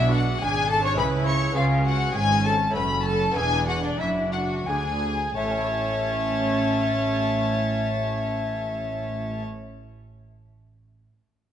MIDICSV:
0, 0, Header, 1, 8, 480
1, 0, Start_track
1, 0, Key_signature, 3, "major"
1, 0, Tempo, 579151
1, 1295, Time_signature, 3, 2, 24, 8
1, 1782, Tempo, 617284
1, 3222, Tempo, 679502
1, 4182, Tempo, 703400
1, 8389, End_track
2, 0, Start_track
2, 0, Title_t, "Recorder"
2, 0, Program_c, 0, 74
2, 0, Note_on_c, 0, 76, 88
2, 99, Note_off_c, 0, 76, 0
2, 104, Note_on_c, 0, 78, 69
2, 157, Note_off_c, 0, 78, 0
2, 342, Note_on_c, 0, 80, 90
2, 575, Note_off_c, 0, 80, 0
2, 578, Note_on_c, 0, 81, 86
2, 689, Note_off_c, 0, 81, 0
2, 694, Note_on_c, 0, 85, 78
2, 744, Note_off_c, 0, 85, 0
2, 815, Note_on_c, 0, 83, 91
2, 869, Note_off_c, 0, 83, 0
2, 1057, Note_on_c, 0, 85, 87
2, 1111, Note_off_c, 0, 85, 0
2, 1293, Note_on_c, 0, 77, 90
2, 1540, Note_on_c, 0, 78, 81
2, 1553, Note_off_c, 0, 77, 0
2, 1782, Note_on_c, 0, 80, 81
2, 1794, Note_off_c, 0, 78, 0
2, 2016, Note_on_c, 0, 81, 92
2, 2027, Note_off_c, 0, 80, 0
2, 2242, Note_off_c, 0, 81, 0
2, 2247, Note_on_c, 0, 83, 78
2, 2480, Note_off_c, 0, 83, 0
2, 2484, Note_on_c, 0, 81, 80
2, 2729, Note_on_c, 0, 80, 89
2, 2740, Note_off_c, 0, 81, 0
2, 2967, Note_off_c, 0, 80, 0
2, 2972, Note_on_c, 0, 78, 71
2, 3089, Note_off_c, 0, 78, 0
2, 3093, Note_on_c, 0, 74, 76
2, 3221, Note_on_c, 0, 76, 81
2, 3232, Note_off_c, 0, 74, 0
2, 3448, Note_off_c, 0, 76, 0
2, 3452, Note_on_c, 0, 78, 79
2, 3686, Note_on_c, 0, 80, 79
2, 3697, Note_off_c, 0, 78, 0
2, 4174, Note_off_c, 0, 80, 0
2, 4178, Note_on_c, 0, 76, 74
2, 6953, Note_off_c, 0, 76, 0
2, 8389, End_track
3, 0, Start_track
3, 0, Title_t, "Violin section"
3, 0, Program_c, 1, 48
3, 0, Note_on_c, 1, 76, 114
3, 102, Note_off_c, 1, 76, 0
3, 106, Note_on_c, 1, 78, 91
3, 339, Note_on_c, 1, 80, 116
3, 342, Note_off_c, 1, 78, 0
3, 578, Note_off_c, 1, 80, 0
3, 580, Note_on_c, 1, 81, 98
3, 696, Note_off_c, 1, 81, 0
3, 705, Note_on_c, 1, 85, 105
3, 751, Note_off_c, 1, 85, 0
3, 816, Note_on_c, 1, 83, 98
3, 882, Note_off_c, 1, 83, 0
3, 1053, Note_on_c, 1, 85, 103
3, 1290, Note_off_c, 1, 85, 0
3, 1293, Note_on_c, 1, 77, 101
3, 1359, Note_off_c, 1, 77, 0
3, 1534, Note_on_c, 1, 78, 97
3, 1775, Note_off_c, 1, 78, 0
3, 1777, Note_on_c, 1, 80, 118
3, 2007, Note_off_c, 1, 80, 0
3, 2010, Note_on_c, 1, 81, 103
3, 2244, Note_on_c, 1, 83, 99
3, 2246, Note_off_c, 1, 81, 0
3, 2479, Note_off_c, 1, 83, 0
3, 2481, Note_on_c, 1, 81, 101
3, 2720, Note_on_c, 1, 80, 114
3, 2724, Note_off_c, 1, 81, 0
3, 2964, Note_off_c, 1, 80, 0
3, 2968, Note_on_c, 1, 78, 86
3, 3092, Note_off_c, 1, 78, 0
3, 3104, Note_on_c, 1, 74, 82
3, 3218, Note_on_c, 1, 76, 90
3, 3225, Note_off_c, 1, 74, 0
3, 3275, Note_off_c, 1, 76, 0
3, 3450, Note_on_c, 1, 78, 90
3, 3506, Note_off_c, 1, 78, 0
3, 3687, Note_on_c, 1, 80, 86
3, 4171, Note_off_c, 1, 80, 0
3, 4176, Note_on_c, 1, 81, 95
3, 6951, Note_off_c, 1, 81, 0
3, 8389, End_track
4, 0, Start_track
4, 0, Title_t, "Violin section"
4, 0, Program_c, 2, 48
4, 0, Note_on_c, 2, 64, 97
4, 98, Note_off_c, 2, 64, 0
4, 102, Note_on_c, 2, 66, 77
4, 340, Note_off_c, 2, 66, 0
4, 342, Note_on_c, 2, 68, 91
4, 574, Note_on_c, 2, 69, 102
4, 579, Note_off_c, 2, 68, 0
4, 694, Note_on_c, 2, 73, 97
4, 695, Note_off_c, 2, 69, 0
4, 812, Note_off_c, 2, 73, 0
4, 813, Note_on_c, 2, 71, 93
4, 1053, Note_off_c, 2, 71, 0
4, 1058, Note_on_c, 2, 73, 88
4, 1297, Note_off_c, 2, 73, 0
4, 1300, Note_on_c, 2, 65, 83
4, 1540, Note_off_c, 2, 65, 0
4, 1546, Note_on_c, 2, 66, 89
4, 1781, Note_off_c, 2, 66, 0
4, 1788, Note_on_c, 2, 68, 90
4, 2017, Note_off_c, 2, 68, 0
4, 2020, Note_on_c, 2, 69, 87
4, 2082, Note_off_c, 2, 69, 0
4, 2254, Note_on_c, 2, 71, 86
4, 2316, Note_off_c, 2, 71, 0
4, 2487, Note_on_c, 2, 69, 87
4, 2723, Note_off_c, 2, 69, 0
4, 2729, Note_on_c, 2, 68, 99
4, 2971, Note_on_c, 2, 66, 81
4, 2974, Note_off_c, 2, 68, 0
4, 3093, Note_off_c, 2, 66, 0
4, 3093, Note_on_c, 2, 62, 79
4, 3218, Note_off_c, 2, 62, 0
4, 3224, Note_on_c, 2, 64, 72
4, 3454, Note_off_c, 2, 64, 0
4, 3455, Note_on_c, 2, 66, 85
4, 3686, Note_off_c, 2, 66, 0
4, 3691, Note_on_c, 2, 68, 83
4, 4183, Note_off_c, 2, 68, 0
4, 4185, Note_on_c, 2, 73, 75
4, 6960, Note_off_c, 2, 73, 0
4, 8389, End_track
5, 0, Start_track
5, 0, Title_t, "Viola section"
5, 0, Program_c, 3, 48
5, 0, Note_on_c, 3, 62, 83
5, 331, Note_off_c, 3, 62, 0
5, 341, Note_on_c, 3, 62, 70
5, 807, Note_off_c, 3, 62, 0
5, 813, Note_on_c, 3, 64, 75
5, 1294, Note_off_c, 3, 64, 0
5, 1294, Note_on_c, 3, 61, 73
5, 1771, Note_off_c, 3, 61, 0
5, 1781, Note_on_c, 3, 61, 67
5, 2239, Note_off_c, 3, 61, 0
5, 2251, Note_on_c, 3, 61, 69
5, 2719, Note_off_c, 3, 61, 0
5, 2731, Note_on_c, 3, 62, 69
5, 3214, Note_off_c, 3, 62, 0
5, 3223, Note_on_c, 3, 62, 66
5, 3681, Note_off_c, 3, 62, 0
5, 3691, Note_on_c, 3, 62, 59
5, 4004, Note_off_c, 3, 62, 0
5, 4182, Note_on_c, 3, 61, 78
5, 6957, Note_off_c, 3, 61, 0
5, 8389, End_track
6, 0, Start_track
6, 0, Title_t, "Lute"
6, 0, Program_c, 4, 24
6, 0, Note_on_c, 4, 47, 61
6, 0, Note_on_c, 4, 56, 54
6, 0, Note_on_c, 4, 62, 58
6, 0, Note_on_c, 4, 68, 49
6, 306, Note_off_c, 4, 47, 0
6, 340, Note_on_c, 4, 44, 67
6, 766, Note_off_c, 4, 56, 0
6, 774, Note_off_c, 4, 62, 0
6, 776, Note_on_c, 4, 56, 56
6, 781, Note_off_c, 4, 68, 0
6, 783, Note_off_c, 4, 44, 0
6, 791, Note_on_c, 4, 64, 62
6, 803, Note_on_c, 4, 68, 55
6, 815, Note_on_c, 4, 49, 64
6, 1253, Note_off_c, 4, 56, 0
6, 1256, Note_on_c, 4, 59, 55
6, 1262, Note_off_c, 4, 49, 0
6, 1267, Note_on_c, 4, 61, 53
6, 1268, Note_off_c, 4, 64, 0
6, 1269, Note_off_c, 4, 68, 0
6, 1279, Note_on_c, 4, 68, 50
6, 1293, Note_on_c, 4, 49, 60
6, 1747, Note_off_c, 4, 49, 0
6, 1780, Note_on_c, 4, 44, 73
6, 2202, Note_off_c, 4, 59, 0
6, 2207, Note_off_c, 4, 61, 0
6, 2209, Note_on_c, 4, 57, 62
6, 2213, Note_off_c, 4, 68, 0
6, 2216, Note_off_c, 4, 44, 0
6, 2220, Note_on_c, 4, 61, 65
6, 2233, Note_on_c, 4, 69, 62
6, 2244, Note_on_c, 4, 42, 63
6, 2685, Note_off_c, 4, 61, 0
6, 2688, Note_on_c, 4, 59, 53
6, 2692, Note_off_c, 4, 57, 0
6, 2694, Note_off_c, 4, 42, 0
6, 2700, Note_on_c, 4, 62, 51
6, 2705, Note_off_c, 4, 69, 0
6, 2709, Note_off_c, 4, 62, 0
6, 2712, Note_on_c, 4, 64, 54
6, 2724, Note_on_c, 4, 40, 59
6, 3187, Note_off_c, 4, 59, 0
6, 3190, Note_off_c, 4, 40, 0
6, 3227, Note_on_c, 4, 42, 63
6, 3664, Note_off_c, 4, 42, 0
6, 3693, Note_on_c, 4, 38, 68
6, 4147, Note_off_c, 4, 64, 0
6, 4155, Note_off_c, 4, 38, 0
6, 4184, Note_on_c, 4, 45, 56
6, 4233, Note_on_c, 4, 57, 57
6, 4281, Note_on_c, 4, 61, 59
6, 4328, Note_on_c, 4, 64, 54
6, 4375, Note_on_c, 4, 73, 55
6, 6959, Note_off_c, 4, 45, 0
6, 7008, Note_off_c, 4, 57, 0
6, 7056, Note_off_c, 4, 61, 0
6, 7103, Note_off_c, 4, 64, 0
6, 7150, Note_off_c, 4, 73, 0
6, 8389, End_track
7, 0, Start_track
7, 0, Title_t, "Cello section"
7, 0, Program_c, 5, 48
7, 0, Note_on_c, 5, 47, 86
7, 331, Note_off_c, 5, 47, 0
7, 341, Note_on_c, 5, 44, 75
7, 808, Note_off_c, 5, 44, 0
7, 817, Note_on_c, 5, 49, 87
7, 1289, Note_off_c, 5, 49, 0
7, 1299, Note_on_c, 5, 49, 83
7, 1773, Note_off_c, 5, 49, 0
7, 1783, Note_on_c, 5, 44, 79
7, 2240, Note_off_c, 5, 44, 0
7, 2250, Note_on_c, 5, 42, 82
7, 2718, Note_off_c, 5, 42, 0
7, 2732, Note_on_c, 5, 40, 89
7, 3215, Note_off_c, 5, 40, 0
7, 3228, Note_on_c, 5, 42, 67
7, 3684, Note_off_c, 5, 42, 0
7, 3697, Note_on_c, 5, 38, 79
7, 4176, Note_off_c, 5, 38, 0
7, 4187, Note_on_c, 5, 45, 72
7, 6962, Note_off_c, 5, 45, 0
7, 8389, End_track
8, 0, Start_track
8, 0, Title_t, "Double bass section"
8, 0, Program_c, 6, 48
8, 0, Note_on_c, 6, 35, 86
8, 332, Note_off_c, 6, 35, 0
8, 340, Note_on_c, 6, 32, 83
8, 807, Note_off_c, 6, 32, 0
8, 813, Note_on_c, 6, 37, 88
8, 1284, Note_off_c, 6, 37, 0
8, 1294, Note_on_c, 6, 37, 88
8, 1771, Note_off_c, 6, 37, 0
8, 1777, Note_on_c, 6, 32, 87
8, 2237, Note_off_c, 6, 32, 0
8, 2248, Note_on_c, 6, 30, 82
8, 2717, Note_off_c, 6, 30, 0
8, 2727, Note_on_c, 6, 28, 91
8, 3212, Note_off_c, 6, 28, 0
8, 3222, Note_on_c, 6, 30, 75
8, 3681, Note_off_c, 6, 30, 0
8, 3692, Note_on_c, 6, 38, 80
8, 4173, Note_off_c, 6, 38, 0
8, 4186, Note_on_c, 6, 33, 74
8, 6961, Note_off_c, 6, 33, 0
8, 8389, End_track
0, 0, End_of_file